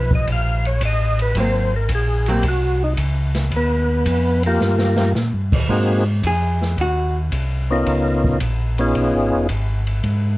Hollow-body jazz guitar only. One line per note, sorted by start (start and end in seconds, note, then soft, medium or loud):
0.00 0.72 F3 medium
0.00 0.73 B3 medium
0.00 0.73 D#4 medium
1.37 1.70 F#3 medium
1.37 1.71 A#3 medium
1.37 1.71 C4 medium
2.28 2.43 F#3 medium
2.28 2.44 A#3 medium
2.28 2.44 C4 medium
6.27 6.76 G#4 medium
6.81 7.16 F#4 medium